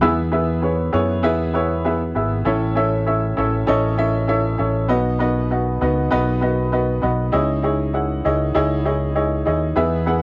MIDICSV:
0, 0, Header, 1, 3, 480
1, 0, Start_track
1, 0, Key_signature, 4, "major"
1, 0, Tempo, 609756
1, 14, Time_signature, 4, 2, 24, 8
1, 8045, End_track
2, 0, Start_track
2, 0, Title_t, "Upright piano"
2, 0, Program_c, 0, 0
2, 0, Control_c, 0, 64, 127
2, 10, Note_on_c, 0, 59, 98
2, 13, Note_on_c, 0, 64, 91
2, 15, Note_on_c, 0, 68, 83
2, 16, Note_on_c, 0, 52, 72
2, 18, Note_on_c, 0, 71, 79
2, 21, Note_on_c, 0, 76, 101
2, 25, Control_c, 0, 64, 0
2, 167, Control_c, 0, 64, 127
2, 182, Note_off_c, 0, 59, 0
2, 183, Note_off_c, 0, 64, 0
2, 184, Note_off_c, 0, 68, 0
2, 186, Note_off_c, 0, 71, 0
2, 188, Note_off_c, 0, 76, 0
2, 249, Note_on_c, 0, 59, 89
2, 251, Note_on_c, 0, 64, 88
2, 252, Note_on_c, 0, 68, 85
2, 257, Note_on_c, 0, 71, 88
2, 260, Note_on_c, 0, 76, 96
2, 422, Note_off_c, 0, 59, 0
2, 422, Note_off_c, 0, 64, 0
2, 423, Note_off_c, 0, 68, 0
2, 425, Note_off_c, 0, 71, 0
2, 427, Note_off_c, 0, 76, 0
2, 488, Note_on_c, 0, 59, 67
2, 488, Note_on_c, 0, 64, 71
2, 491, Note_on_c, 0, 68, 68
2, 494, Note_on_c, 0, 71, 71
2, 499, Note_on_c, 0, 73, 83
2, 661, Note_off_c, 0, 59, 0
2, 661, Note_off_c, 0, 64, 0
2, 662, Note_off_c, 0, 68, 0
2, 664, Note_off_c, 0, 71, 0
2, 666, Note_off_c, 0, 73, 0
2, 703, Note_off_c, 0, 52, 0
2, 728, Note_on_c, 0, 59, 93
2, 729, Note_on_c, 0, 64, 81
2, 732, Note_on_c, 0, 68, 88
2, 732, Note_on_c, 0, 71, 88
2, 737, Note_on_c, 0, 73, 106
2, 901, Note_off_c, 0, 59, 0
2, 902, Note_off_c, 0, 64, 0
2, 903, Note_off_c, 0, 68, 0
2, 903, Note_off_c, 0, 71, 0
2, 906, Note_off_c, 0, 73, 0
2, 967, Note_on_c, 0, 59, 106
2, 970, Note_on_c, 0, 64, 100
2, 972, Note_on_c, 0, 68, 99
2, 975, Note_on_c, 0, 71, 94
2, 977, Note_on_c, 0, 76, 112
2, 1140, Note_off_c, 0, 59, 0
2, 1142, Note_off_c, 0, 64, 0
2, 1143, Note_off_c, 0, 68, 0
2, 1144, Note_off_c, 0, 71, 0
2, 1146, Note_off_c, 0, 76, 0
2, 1208, Note_on_c, 0, 59, 89
2, 1212, Note_on_c, 0, 64, 83
2, 1213, Note_on_c, 0, 68, 71
2, 1217, Note_on_c, 0, 71, 85
2, 1220, Note_on_c, 0, 73, 101
2, 1381, Note_off_c, 0, 59, 0
2, 1383, Note_off_c, 0, 64, 0
2, 1383, Note_off_c, 0, 68, 0
2, 1385, Note_off_c, 0, 71, 0
2, 1387, Note_off_c, 0, 73, 0
2, 1452, Note_on_c, 0, 59, 89
2, 1455, Note_on_c, 0, 64, 75
2, 1456, Note_on_c, 0, 68, 78
2, 1462, Note_on_c, 0, 71, 78
2, 1463, Note_on_c, 0, 76, 94
2, 1623, Note_off_c, 0, 59, 0
2, 1624, Note_off_c, 0, 64, 0
2, 1625, Note_off_c, 0, 68, 0
2, 1628, Note_off_c, 0, 71, 0
2, 1628, Note_off_c, 0, 76, 0
2, 1690, Note_on_c, 0, 59, 88
2, 1694, Note_on_c, 0, 64, 74
2, 1697, Note_on_c, 0, 71, 76
2, 1698, Note_on_c, 0, 68, 77
2, 1700, Note_on_c, 0, 76, 90
2, 1862, Note_off_c, 0, 59, 0
2, 1864, Note_off_c, 0, 64, 0
2, 1865, Note_off_c, 0, 68, 0
2, 1865, Note_off_c, 0, 71, 0
2, 1867, Note_off_c, 0, 76, 0
2, 1926, Note_on_c, 0, 61, 96
2, 1930, Note_on_c, 0, 64, 95
2, 1933, Note_on_c, 0, 69, 91
2, 1934, Note_on_c, 0, 45, 73
2, 1934, Note_on_c, 0, 73, 87
2, 1936, Note_on_c, 0, 76, 97
2, 1942, Control_c, 0, 64, 0
2, 2062, Control_c, 0, 64, 127
2, 2099, Note_off_c, 0, 61, 0
2, 2102, Note_off_c, 0, 64, 0
2, 2103, Note_off_c, 0, 69, 0
2, 2104, Note_off_c, 0, 73, 0
2, 2105, Note_off_c, 0, 76, 0
2, 2166, Note_on_c, 0, 61, 90
2, 2169, Note_on_c, 0, 64, 82
2, 2172, Note_on_c, 0, 69, 82
2, 2175, Note_on_c, 0, 73, 76
2, 2178, Note_on_c, 0, 76, 101
2, 2340, Note_off_c, 0, 61, 0
2, 2341, Note_off_c, 0, 64, 0
2, 2343, Note_off_c, 0, 69, 0
2, 2344, Note_off_c, 0, 73, 0
2, 2346, Note_off_c, 0, 76, 0
2, 2410, Note_on_c, 0, 61, 74
2, 2412, Note_on_c, 0, 64, 73
2, 2414, Note_on_c, 0, 69, 69
2, 2418, Note_on_c, 0, 76, 90
2, 2419, Note_on_c, 0, 73, 74
2, 2582, Note_off_c, 0, 61, 0
2, 2582, Note_off_c, 0, 64, 0
2, 2583, Note_off_c, 0, 69, 0
2, 2586, Note_off_c, 0, 73, 0
2, 2586, Note_off_c, 0, 76, 0
2, 2622, Note_off_c, 0, 45, 0
2, 2649, Note_on_c, 0, 61, 93
2, 2651, Note_on_c, 0, 64, 88
2, 2655, Note_on_c, 0, 69, 87
2, 2658, Note_on_c, 0, 73, 82
2, 2662, Note_on_c, 0, 76, 93
2, 2821, Note_off_c, 0, 61, 0
2, 2822, Note_off_c, 0, 64, 0
2, 2824, Note_off_c, 0, 69, 0
2, 2825, Note_off_c, 0, 73, 0
2, 2828, Note_off_c, 0, 76, 0
2, 2886, Note_on_c, 0, 61, 112
2, 2889, Note_on_c, 0, 64, 93
2, 2891, Note_on_c, 0, 69, 101
2, 2895, Note_on_c, 0, 73, 100
2, 2898, Note_on_c, 0, 75, 119
2, 3059, Note_off_c, 0, 61, 0
2, 3061, Note_off_c, 0, 64, 0
2, 3062, Note_off_c, 0, 69, 0
2, 3064, Note_off_c, 0, 73, 0
2, 3066, Note_off_c, 0, 75, 0
2, 3127, Note_on_c, 0, 61, 96
2, 3130, Note_on_c, 0, 64, 79
2, 3130, Note_on_c, 0, 69, 78
2, 3132, Note_on_c, 0, 73, 75
2, 3135, Note_on_c, 0, 76, 107
2, 3300, Note_off_c, 0, 61, 0
2, 3301, Note_off_c, 0, 64, 0
2, 3302, Note_off_c, 0, 69, 0
2, 3303, Note_off_c, 0, 73, 0
2, 3304, Note_off_c, 0, 76, 0
2, 3363, Note_on_c, 0, 61, 85
2, 3368, Note_on_c, 0, 64, 86
2, 3370, Note_on_c, 0, 69, 82
2, 3374, Note_on_c, 0, 73, 85
2, 3376, Note_on_c, 0, 76, 105
2, 3538, Note_off_c, 0, 61, 0
2, 3540, Note_off_c, 0, 64, 0
2, 3542, Note_off_c, 0, 69, 0
2, 3543, Note_off_c, 0, 73, 0
2, 3544, Note_off_c, 0, 76, 0
2, 3605, Note_on_c, 0, 61, 81
2, 3608, Note_on_c, 0, 64, 70
2, 3610, Note_on_c, 0, 69, 72
2, 3614, Note_on_c, 0, 73, 82
2, 3615, Note_on_c, 0, 76, 84
2, 3779, Note_off_c, 0, 61, 0
2, 3780, Note_off_c, 0, 64, 0
2, 3781, Note_off_c, 0, 69, 0
2, 3783, Note_off_c, 0, 73, 0
2, 3784, Note_off_c, 0, 76, 0
2, 3847, Note_on_c, 0, 59, 101
2, 3848, Note_on_c, 0, 63, 91
2, 3852, Note_on_c, 0, 47, 70
2, 3852, Note_on_c, 0, 66, 89
2, 3855, Note_on_c, 0, 71, 82
2, 3855, Note_on_c, 0, 75, 121
2, 3862, Control_c, 0, 64, 0
2, 3990, Control_c, 0, 64, 127
2, 4020, Note_off_c, 0, 59, 0
2, 4020, Note_off_c, 0, 63, 0
2, 4022, Note_off_c, 0, 66, 0
2, 4024, Note_off_c, 0, 71, 0
2, 4024, Note_off_c, 0, 75, 0
2, 4087, Note_on_c, 0, 59, 89
2, 4092, Note_on_c, 0, 63, 87
2, 4092, Note_on_c, 0, 66, 92
2, 4097, Note_on_c, 0, 71, 93
2, 4097, Note_on_c, 0, 75, 109
2, 4260, Note_off_c, 0, 59, 0
2, 4262, Note_off_c, 0, 63, 0
2, 4262, Note_off_c, 0, 66, 0
2, 4265, Note_off_c, 0, 71, 0
2, 4265, Note_off_c, 0, 75, 0
2, 4332, Note_on_c, 0, 59, 79
2, 4336, Note_on_c, 0, 63, 78
2, 4339, Note_on_c, 0, 66, 79
2, 4341, Note_on_c, 0, 71, 75
2, 4344, Note_on_c, 0, 75, 84
2, 4502, Note_off_c, 0, 59, 0
2, 4504, Note_off_c, 0, 63, 0
2, 4506, Note_off_c, 0, 66, 0
2, 4507, Note_off_c, 0, 71, 0
2, 4508, Note_off_c, 0, 75, 0
2, 4540, Note_off_c, 0, 47, 0
2, 4574, Note_on_c, 0, 59, 95
2, 4574, Note_on_c, 0, 63, 89
2, 4577, Note_on_c, 0, 66, 85
2, 4579, Note_on_c, 0, 71, 84
2, 4583, Note_on_c, 0, 75, 101
2, 4743, Note_off_c, 0, 59, 0
2, 4743, Note_off_c, 0, 63, 0
2, 4745, Note_off_c, 0, 66, 0
2, 4745, Note_off_c, 0, 71, 0
2, 4748, Note_off_c, 0, 75, 0
2, 4806, Note_on_c, 0, 59, 110
2, 4807, Note_on_c, 0, 63, 105
2, 4812, Note_on_c, 0, 66, 91
2, 4814, Note_on_c, 0, 71, 111
2, 4816, Note_on_c, 0, 75, 119
2, 4979, Note_off_c, 0, 59, 0
2, 4980, Note_off_c, 0, 63, 0
2, 4982, Note_off_c, 0, 66, 0
2, 4983, Note_off_c, 0, 71, 0
2, 4984, Note_off_c, 0, 75, 0
2, 5047, Note_on_c, 0, 59, 83
2, 5052, Note_on_c, 0, 63, 79
2, 5053, Note_on_c, 0, 66, 89
2, 5055, Note_on_c, 0, 71, 79
2, 5057, Note_on_c, 0, 75, 100
2, 5220, Note_off_c, 0, 59, 0
2, 5222, Note_off_c, 0, 63, 0
2, 5223, Note_off_c, 0, 66, 0
2, 5224, Note_off_c, 0, 71, 0
2, 5225, Note_off_c, 0, 75, 0
2, 5291, Note_on_c, 0, 59, 82
2, 5293, Note_on_c, 0, 63, 77
2, 5296, Note_on_c, 0, 66, 86
2, 5297, Note_on_c, 0, 71, 93
2, 5300, Note_on_c, 0, 75, 96
2, 5462, Note_off_c, 0, 59, 0
2, 5463, Note_off_c, 0, 63, 0
2, 5464, Note_off_c, 0, 66, 0
2, 5465, Note_off_c, 0, 71, 0
2, 5466, Note_off_c, 0, 75, 0
2, 5526, Note_on_c, 0, 59, 90
2, 5529, Note_on_c, 0, 63, 73
2, 5530, Note_on_c, 0, 66, 83
2, 5536, Note_on_c, 0, 71, 88
2, 5536, Note_on_c, 0, 75, 99
2, 5699, Note_off_c, 0, 59, 0
2, 5700, Note_off_c, 0, 63, 0
2, 5701, Note_off_c, 0, 66, 0
2, 5704, Note_off_c, 0, 71, 0
2, 5704, Note_off_c, 0, 75, 0
2, 5763, Note_on_c, 0, 63, 106
2, 5767, Note_on_c, 0, 64, 97
2, 5770, Note_on_c, 0, 49, 65
2, 5771, Note_on_c, 0, 68, 93
2, 5772, Note_on_c, 0, 73, 88
2, 5773, Note_on_c, 0, 75, 110
2, 5781, Control_c, 0, 64, 0
2, 5908, Control_c, 0, 64, 127
2, 5937, Note_off_c, 0, 63, 0
2, 5940, Note_off_c, 0, 64, 0
2, 5941, Note_off_c, 0, 68, 0
2, 5942, Note_off_c, 0, 73, 0
2, 5942, Note_off_c, 0, 75, 0
2, 6004, Note_on_c, 0, 63, 86
2, 6008, Note_on_c, 0, 64, 75
2, 6012, Note_on_c, 0, 68, 92
2, 6016, Note_on_c, 0, 73, 82
2, 6016, Note_on_c, 0, 75, 95
2, 6178, Note_off_c, 0, 63, 0
2, 6180, Note_off_c, 0, 64, 0
2, 6182, Note_off_c, 0, 68, 0
2, 6184, Note_off_c, 0, 73, 0
2, 6184, Note_off_c, 0, 75, 0
2, 6245, Note_on_c, 0, 63, 78
2, 6246, Note_on_c, 0, 64, 75
2, 6249, Note_on_c, 0, 68, 66
2, 6252, Note_on_c, 0, 73, 62
2, 6253, Note_on_c, 0, 78, 81
2, 6418, Note_off_c, 0, 63, 0
2, 6419, Note_off_c, 0, 64, 0
2, 6420, Note_off_c, 0, 68, 0
2, 6422, Note_off_c, 0, 73, 0
2, 6423, Note_off_c, 0, 78, 0
2, 6459, Note_off_c, 0, 49, 0
2, 6490, Note_on_c, 0, 63, 88
2, 6493, Note_on_c, 0, 64, 84
2, 6495, Note_on_c, 0, 68, 86
2, 6498, Note_on_c, 0, 73, 87
2, 6500, Note_on_c, 0, 75, 103
2, 6661, Note_off_c, 0, 63, 0
2, 6662, Note_off_c, 0, 64, 0
2, 6663, Note_off_c, 0, 68, 0
2, 6665, Note_off_c, 0, 73, 0
2, 6666, Note_off_c, 0, 75, 0
2, 6725, Note_on_c, 0, 63, 102
2, 6728, Note_on_c, 0, 64, 102
2, 6733, Note_on_c, 0, 68, 101
2, 6733, Note_on_c, 0, 73, 94
2, 6737, Note_on_c, 0, 75, 113
2, 6898, Note_off_c, 0, 63, 0
2, 6900, Note_off_c, 0, 64, 0
2, 6902, Note_off_c, 0, 68, 0
2, 6902, Note_off_c, 0, 73, 0
2, 6904, Note_off_c, 0, 75, 0
2, 6967, Note_on_c, 0, 63, 82
2, 6968, Note_on_c, 0, 64, 79
2, 6971, Note_on_c, 0, 68, 87
2, 6973, Note_on_c, 0, 73, 83
2, 6977, Note_on_c, 0, 75, 96
2, 7139, Note_off_c, 0, 63, 0
2, 7139, Note_off_c, 0, 64, 0
2, 7141, Note_off_c, 0, 68, 0
2, 7142, Note_off_c, 0, 73, 0
2, 7144, Note_off_c, 0, 75, 0
2, 7203, Note_on_c, 0, 63, 78
2, 7207, Note_on_c, 0, 64, 78
2, 7208, Note_on_c, 0, 68, 78
2, 7208, Note_on_c, 0, 73, 80
2, 7212, Note_on_c, 0, 75, 93
2, 7377, Note_off_c, 0, 63, 0
2, 7379, Note_off_c, 0, 64, 0
2, 7379, Note_off_c, 0, 68, 0
2, 7380, Note_off_c, 0, 73, 0
2, 7381, Note_off_c, 0, 75, 0
2, 7443, Note_on_c, 0, 63, 87
2, 7447, Note_on_c, 0, 64, 74
2, 7451, Note_on_c, 0, 68, 82
2, 7453, Note_on_c, 0, 73, 79
2, 7453, Note_on_c, 0, 75, 94
2, 7617, Note_off_c, 0, 63, 0
2, 7619, Note_off_c, 0, 64, 0
2, 7621, Note_off_c, 0, 68, 0
2, 7622, Note_off_c, 0, 73, 0
2, 7622, Note_off_c, 0, 75, 0
2, 7682, Note_on_c, 0, 59, 105
2, 7684, Note_on_c, 0, 64, 91
2, 7688, Note_on_c, 0, 52, 64
2, 7688, Note_on_c, 0, 68, 103
2, 7690, Note_on_c, 0, 71, 96
2, 7692, Note_on_c, 0, 76, 116
2, 7700, Control_c, 0, 64, 0
2, 7818, Control_c, 0, 64, 127
2, 7856, Note_off_c, 0, 59, 0
2, 7858, Note_off_c, 0, 64, 0
2, 7859, Note_off_c, 0, 68, 0
2, 7860, Note_off_c, 0, 71, 0
2, 7861, Note_off_c, 0, 76, 0
2, 7920, Note_on_c, 0, 59, 86
2, 7925, Note_on_c, 0, 64, 73
2, 7926, Note_on_c, 0, 68, 88
2, 7928, Note_on_c, 0, 71, 80
2, 7931, Note_on_c, 0, 78, 96
2, 8045, Note_off_c, 0, 52, 0
2, 8045, Note_off_c, 0, 59, 0
2, 8045, Note_off_c, 0, 64, 0
2, 8045, Note_off_c, 0, 68, 0
2, 8045, Note_off_c, 0, 71, 0
2, 8045, Note_off_c, 0, 78, 0
2, 8045, End_track
3, 0, Start_track
3, 0, Title_t, "Fretless electric bass"
3, 0, Program_c, 1, 35
3, 738, Note_on_c, 1, 42, 86
3, 980, Note_off_c, 1, 42, 0
3, 980, Note_on_c, 1, 40, 104
3, 1665, Note_off_c, 1, 40, 0
3, 1697, Note_on_c, 1, 32, 83
3, 1918, Note_off_c, 1, 32, 0
3, 1935, Note_on_c, 1, 33, 122
3, 2622, Note_off_c, 1, 33, 0
3, 2658, Note_on_c, 1, 33, 87
3, 2879, Note_off_c, 1, 33, 0
3, 2896, Note_on_c, 1, 33, 95
3, 3583, Note_off_c, 1, 33, 0
3, 3617, Note_on_c, 1, 33, 83
3, 3859, Note_off_c, 1, 33, 0
3, 3859, Note_on_c, 1, 35, 126
3, 4544, Note_off_c, 1, 35, 0
3, 4579, Note_on_c, 1, 37, 93
3, 4799, Note_off_c, 1, 37, 0
3, 4821, Note_on_c, 1, 35, 97
3, 5505, Note_off_c, 1, 35, 0
3, 5539, Note_on_c, 1, 35, 90
3, 5759, Note_off_c, 1, 35, 0
3, 5779, Note_on_c, 1, 37, 122
3, 6464, Note_off_c, 1, 37, 0
3, 6498, Note_on_c, 1, 37, 83
3, 6718, Note_off_c, 1, 37, 0
3, 6733, Note_on_c, 1, 37, 102
3, 7420, Note_off_c, 1, 37, 0
3, 7456, Note_on_c, 1, 39, 78
3, 7677, Note_off_c, 1, 39, 0
3, 7691, Note_on_c, 1, 40, 120
3, 8045, Note_off_c, 1, 40, 0
3, 8045, End_track
0, 0, End_of_file